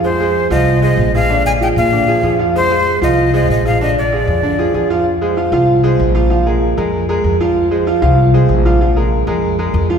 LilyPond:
<<
  \new Staff \with { instrumentName = "Flute" } { \time 4/4 \key f \dorian \tempo 4 = 192 c''4. ees''4 ees''4 f''8~ | f''8 aes''8 g''8 f''2 r8 | c''4. ees''4 ees''8 ees''8 f''8 | ees''8 d''2. r8 |
r1 | r1 | r1 | r1 | }
  \new Staff \with { instrumentName = "Grand piano" } { \time 4/4 \key f \dorian <aes aes' c''>8 <aes aes' c''>4 <f f' f''>4 <aes aes' c''>4 <f f' aes'>8 | <d d' d''>4 <f f' aes'>4 <d d' d''>8 <f f' aes'>8 <f f' aes'>8 <f f' f''>8 | <aes aes' c''>8 <aes aes' c''>4 <f f' f''>4 <aes aes' c''>4 <f f' aes'>8 | <d d' d''>4 <f f' aes'>4 <d d' d''>8 <f f' aes'>8 <f f' aes'>8 <f f' f''>8 |
r8 <aes aes' c''>8 <f f' f''>8 <f f' f''>4 <aes aes' c''>4 <f f' f''>8 | <f f' f''>8 <aes aes' bes'>4 <aes aes' bes'>4 <aes aes' bes'>4 <f f' f''>8~ | <f f' f''>8 <aes aes' c''>8 <f f' f''>8 <f f' f''>4 <aes aes' c''>4 <f f' f''>8 | <f f' f''>8 <aes aes' bes'>4 <aes aes' bes'>4 <aes aes' bes'>4 <f f' f''>8 | }
  \new Staff \with { instrumentName = "Upright bass" } { \clef bass \time 4/4 \key f \dorian f,4. c,4. bes,,4~ | bes,,4. bes,4. f,4~ | f,4. c,4. bes,,4~ | bes,,4. f,4. f,4~ |
f,4. c,4. bes,,4~ | bes,,4. f,4. f,4~ | f,4. c,4. bes,,4~ | bes,,4. f,4. f,4 | }
>>